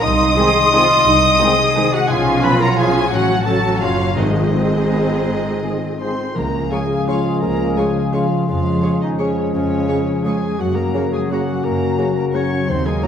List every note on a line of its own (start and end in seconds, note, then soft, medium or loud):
0.00 0.31 C2 loud
0.00 1.05 C3 loud
0.00 0.36 D#4 loud
0.00 0.72 G#4 medium
0.00 1.94 D#5 loud
0.00 1.61 C6 loud
0.00 1.92 D#6 loud
0.00 1.89 D#6 loud
0.20 1.22 G#3 medium
0.36 0.50 D#3 medium
0.36 0.45 G#3 medium
0.36 0.50 G#3 medium
0.36 0.49 C4 medium
0.36 1.39 C4 medium
0.36 0.45 D#4 medium
0.36 0.50 G#4 medium
0.36 0.73 G#4 loud
0.55 0.89 D#4 medium
0.72 0.85 D#3 medium
0.72 0.80 G#3 medium
0.72 0.85 G#3 medium
0.72 0.85 C4 medium
0.72 0.80 D#4 medium
0.72 1.05 F4 loud
0.72 1.74 G#4 medium
0.72 0.85 G#4 medium
0.90 1.57 D#4 medium
1.06 1.34 C2 loud
1.06 2.10 C3 loud
1.06 1.40 D#4 loud
1.23 3.13 G#3 medium
1.39 1.54 D#3 medium
1.39 1.47 G#3 medium
1.39 1.54 G#3 medium
1.39 1.53 C4 medium
1.39 2.10 C4 medium
1.39 1.48 D#4 medium
1.39 2.09 G#4 loud
1.39 1.53 G#4 medium
1.58 1.91 D#4 medium
1.75 1.88 D#3 medium
1.75 1.83 G#3 medium
1.75 1.88 G#3 medium
1.75 1.87 C4 medium
1.75 1.83 D#4 medium
1.75 1.87 G#4 medium
1.75 2.78 G#4 medium
1.93 2.10 D#4 medium
1.93 2.10 F#4 loud
1.93 2.09 D#5 loud
1.93 2.09 F#5 loud
2.08 3.08 B1 loud
2.08 3.13 B2 medium
2.08 2.74 F3 medium
2.08 2.74 C#4 medium
2.08 3.09 F4 loud
2.08 2.42 G#4 medium
2.08 2.43 F5 loud
2.08 2.43 G#5 loud
2.08 2.43 G#5 medium
2.26 3.13 F3 medium
2.42 2.55 C#3 medium
2.42 2.55 F3 medium
2.42 3.13 B3 medium
2.42 2.55 C#4 medium
2.42 2.55 G#4 medium
2.42 2.59 B4 loud
2.42 2.61 G#5 loud
2.42 2.61 B5 loud
2.60 2.94 C#4 medium
2.60 2.68 A#4 loud
2.60 2.79 F#5 medium
2.60 2.78 A#5 loud
2.60 2.79 A#5 loud
2.77 2.90 C#3 medium
2.77 3.11 F3 medium
2.77 2.91 F3 medium
2.77 2.90 C#4 medium
2.77 3.11 C#4 medium
2.77 2.89 G#4 medium
2.77 3.12 G#4 loud
2.77 3.13 G#4 medium
2.77 3.11 F5 loud
2.77 3.12 G#5 loud
2.77 3.11 G#5 loud
2.95 3.63 C#4 medium
3.11 3.81 A1 medium
3.11 4.19 A2 medium
3.11 3.44 F#3 medium
3.11 3.44 C#4 medium
3.11 3.47 F#4 medium
3.11 4.16 F#4 loud
3.11 3.45 C#5 loud
3.11 3.46 F#5 loud
3.11 3.47 F#5 loud
3.28 4.19 F#3 medium
3.44 3.59 C#3 medium
3.44 4.16 F#3 medium
3.44 3.59 F#3 medium
3.44 4.19 A3 medium
3.44 3.57 C#4 medium
3.44 4.15 C#4 medium
3.44 3.58 A4 medium
3.44 3.81 A4 loud
3.44 3.81 F#5 medium
3.44 3.82 A5 medium
3.44 3.81 A5 loud
3.64 3.98 C#4 medium
3.81 4.17 F#1 medium
3.81 3.95 C#3 medium
3.81 3.95 F#3 medium
3.81 3.94 C#4 medium
3.81 4.18 F4 loud
3.81 3.94 A4 medium
3.81 4.17 C#5 medium
3.81 4.19 C#5 medium
3.81 4.16 F5 loud
3.81 4.17 F5 medium
4.00 4.19 C#4 medium
4.16 6.19 G#1 medium
4.16 5.26 G#2 medium
4.16 4.69 G#2 loud
4.16 6.18 G#3 medium
4.16 6.19 C4 medium
4.16 5.83 D#4 medium
4.16 6.01 G#4 medium
4.16 6.15 C5 medium
4.16 6.14 D#5 medium
4.16 6.01 D#5 medium
4.34 5.43 G#3 medium
4.52 5.62 D#3 medium
4.52 4.68 D#3 medium
4.52 4.68 G#3 medium
4.52 4.67 C4 medium
4.52 4.66 G#4 medium
4.73 5.09 C4 medium
4.91 5.05 D#3 medium
4.91 5.05 G#3 medium
4.91 5.04 C4 medium
4.91 5.04 G#4 medium
4.91 6.00 G#4 medium
5.10 5.81 C4 medium
5.27 6.37 G#2 medium
5.44 6.43 G#3 medium
5.62 6.37 D#3 medium
5.62 5.78 D#3 medium
5.62 5.77 G#3 medium
5.62 5.76 C4 medium
5.62 5.76 G#4 medium
5.83 6.18 C4 medium
6.00 6.15 D#3 medium
6.00 6.15 G#3 medium
6.00 6.33 C4 medium
6.00 6.14 C4 medium
6.00 6.14 G#4 medium
6.00 6.71 G#4 medium
6.00 6.37 C5 medium
6.00 6.33 C6 medium
6.19 6.37 C4 medium
6.35 6.65 C#2 medium
6.35 6.86 C#3 medium
6.35 7.43 C#3 medium
6.35 8.45 F3 medium
6.35 8.45 G#3 medium
6.35 6.71 A#3 medium
6.35 8.44 C#4 medium
6.35 8.44 G#4 medium
6.35 6.73 A#4 medium
6.35 6.71 A#5 medium
6.44 7.51 G#3 medium
6.53 7.34 C#4 soft
6.63 7.25 F4 medium
6.71 6.85 C#3 medium
6.71 6.79 G#3 medium
6.71 7.08 G#3 medium
6.71 6.79 F4 medium
6.71 7.10 G#4 medium
6.71 7.17 G#4 medium
6.71 6.80 C#5 medium
6.71 6.77 F5 medium
6.71 7.08 G#5 medium
6.71 6.80 C#6 medium
6.81 7.86 C#5 medium
6.91 7.07 F5 medium
7.00 8.04 G#5 medium
7.08 7.21 C#3 medium
7.08 7.42 F3 medium
7.08 7.16 G#3 medium
7.08 7.16 F4 medium
7.08 7.44 F4 medium
7.08 7.17 C#5 medium
7.08 7.14 F5 medium
7.08 7.42 F5 medium
7.08 7.95 F5 medium
7.08 7.16 C#6 medium
7.18 7.77 G#4 medium
7.26 7.68 F4 medium
7.35 7.59 C#4 medium
7.41 7.72 C#2 medium
7.41 8.50 C#3 medium
7.41 7.76 A#3 medium
7.41 7.79 A#4 loud
7.41 7.76 A#5 medium
7.52 8.64 G#3 medium
7.60 8.39 C#4 medium
7.69 8.31 F4 medium
7.77 7.91 C#3 medium
7.77 8.14 G#3 medium
7.77 7.86 G#3 medium
7.77 7.86 F4 medium
7.77 8.14 G#4 medium
7.77 8.22 G#4 medium
7.77 7.85 C#5 medium
7.77 7.83 F5 medium
7.77 8.14 G#5 medium
7.77 7.86 C#6 medium
7.87 9.00 C#5 medium
7.96 8.13 F5 medium
8.05 9.10 G#5 medium
8.13 8.26 C#3 medium
8.13 8.47 F3 medium
8.13 8.22 G#3 medium
8.13 8.48 F4 medium
8.13 8.21 F4 medium
8.13 8.22 C#5 medium
8.13 8.20 F5 medium
8.13 8.47 F5 medium
8.13 10.61 F5 medium
8.13 8.21 C#6 medium
8.23 8.82 G#4 medium
8.32 10.61 F4 medium
8.40 8.73 C#4 medium
8.47 9.53 F2 medium
8.47 8.77 F2 medium
8.47 9.00 F3 medium
8.47 10.56 F3 medium
8.47 10.55 G#3 medium
8.47 10.55 C#4 medium
8.47 9.00 F4 medium
8.47 10.54 G#4 medium
8.47 9.00 F5 medium
8.57 9.62 F3 soft
8.66 9.45 G#3 medium
8.74 8.90 C#4 medium
8.81 8.96 C#3 medium
8.81 8.90 G#3 medium
8.81 8.90 G#4 medium
8.81 9.28 G#4 medium
8.81 8.91 C#5 medium
8.81 8.88 F5 medium
8.81 8.91 C#6 medium
8.92 9.36 C#4 medium
9.01 9.19 D#3 medium
9.01 9.19 D#4 medium
9.01 9.19 C#5 medium
9.01 9.09 D#5 medium
9.11 10.14 G#5 medium
9.18 9.32 C#3 medium
9.18 9.52 C#3 medium
9.18 9.27 G#3 medium
9.18 9.53 C#4 medium
9.18 9.27 G#4 medium
9.18 9.53 C#5 medium
9.18 9.27 C#5 medium
9.18 10.05 C#5 medium
9.18 9.25 F5 soft
9.18 9.26 C#6 medium
9.29 9.87 G#4 soft
9.37 9.79 C#4 medium
9.46 9.70 G#3 soft
9.53 9.83 F2 medium
9.53 10.61 F2 medium
9.53 10.23 C#3 medium
9.53 10.25 C#4 medium
9.53 10.24 C#5 medium
9.63 10.61 F3 medium
9.71 10.50 G#3 soft
9.80 9.96 C#4 medium
9.88 10.02 C#3 medium
9.88 9.97 G#3 medium
9.88 10.33 G#4 medium
9.88 9.97 G#4 medium
9.88 9.96 C#5 medium
9.88 9.95 F5 medium
9.88 9.96 C#6 medium
9.97 10.41 C#4 medium
10.07 10.23 C#5 medium
10.16 10.60 G#5 medium
10.24 10.37 C#3 medium
10.24 10.59 G#3 medium
10.24 10.33 G#3 medium
10.24 10.61 G#4 medium
10.24 10.33 G#4 medium
10.24 11.10 C#5 medium
10.24 10.34 C#5 medium
10.24 10.30 F5 medium
10.24 10.59 G#5 medium
10.24 10.34 C#6 medium
10.34 10.61 G#4 medium
10.42 10.84 C#4 medium
10.51 10.61 G#3 soft
10.58 10.88 F#2 medium
10.58 11.63 F#2 medium
10.58 10.76 F#3 medium
10.58 12.51 F#3 medium
10.58 12.51 A#3 medium
10.58 12.64 C#4 medium
10.58 10.77 F#4 medium
10.58 12.69 F#4 medium
10.58 10.76 F#5 medium
10.67 11.71 C#3 soft
10.75 11.54 F#3 soft
10.75 11.12 A#3 medium
10.75 11.11 A#4 loud
10.75 11.13 A#5 medium
10.85 11.46 C#4 medium
10.93 11.07 C#3 medium
10.93 11.02 A#3 medium
10.93 11.02 F#4 medium
10.93 11.37 A#4 soft
10.93 11.03 C#5 medium
10.93 11.01 F#5 medium
10.93 11.03 A#5 medium
11.02 12.06 F#4 medium
11.11 11.31 G#3 medium
11.11 11.30 G#4 medium
11.11 11.29 C#5 medium
11.11 11.20 G#5 medium
11.21 12.24 A#5 medium
11.30 11.43 C#3 medium
11.30 11.64 F#3 medium
11.30 11.38 A#3 medium
11.30 11.38 F#4 medium
11.30 11.66 F#4 loud
11.30 12.15 C#5 medium
11.30 11.40 C#5 medium
11.30 11.63 F#5 medium
11.30 11.38 F#5 medium
11.30 11.40 A#5 medium
11.38 11.97 A#4 medium
11.48 11.88 C#4 medium
11.55 11.80 F#3 soft
11.64 12.70 F#2 medium
11.64 11.92 F#2 medium
11.64 12.15 A#3 medium
11.64 12.01 A#4 medium
11.64 12.14 A#5 medium
11.72 12.70 C#3 soft
11.81 12.59 F#3 medium
11.89 12.50 C#4 medium
11.98 12.12 C#3 medium
11.98 12.06 A#3 medium
11.98 12.06 F#4 medium
11.98 12.42 A#4 medium
11.98 12.08 C#5 medium
11.98 12.06 F#5 medium
11.98 12.08 A#5 medium
12.07 13.02 F#4 medium
12.16 12.34 A#3 medium
12.16 12.36 A#4 medium
12.16 12.33 C#5 medium
12.16 12.23 A#5 medium
12.25 13.07 A#5 medium
12.33 12.46 C#3 medium
12.33 12.41 A#3 medium
12.33 12.68 C#4 medium
12.33 12.41 F#4 medium
12.33 12.71 C#5 loud
12.33 12.70 C#5 medium
12.33 12.44 C#5 medium
12.33 12.40 F#5 medium
12.33 12.43 A#5 medium
12.33 12.67 C#6 medium
12.43 12.92 A#4 medium
12.52 12.70 C#4 medium
12.60 12.76 F#3 soft
12.68 12.97 D#2 medium
12.68 13.07 D#3 medium
12.68 13.07 F#3 medium
12.68 13.07 A#3 medium
12.68 12.85 C4 medium
12.68 13.07 D#4 medium
12.68 12.87 C5 loud
12.68 12.85 C6 medium
12.77 13.07 F#3 medium
12.85 13.03 G#3 medium
12.85 13.07 D#4 medium
12.85 13.05 G#4 medium
12.85 13.03 G#5 medium
12.93 13.07 A#4 soft
13.02 13.07 F#3 medium
13.02 13.07 A#3 medium
13.02 13.07 F#4 medium
13.02 13.07 A#4 medium
13.02 13.07 F#5 medium
13.02 13.07 A#5 medium